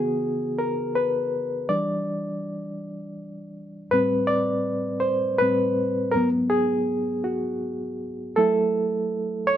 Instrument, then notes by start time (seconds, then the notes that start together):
reed electric piano
Already playing: C#3 E3 B3 F#4 G#4
0.59 A#4
0.95 B4
1.69 E3 G3 D4 D5
3.91 A2 G3 C4 B4
4.27 D5
5.00 C5
5.38 A2 G3 C4 B4
6.12 G#2 F#3 A#4
6.16 B3
6.50 G#4
7.24 F#4
8.36 F#3 A3 E4 A4
9.47 C#5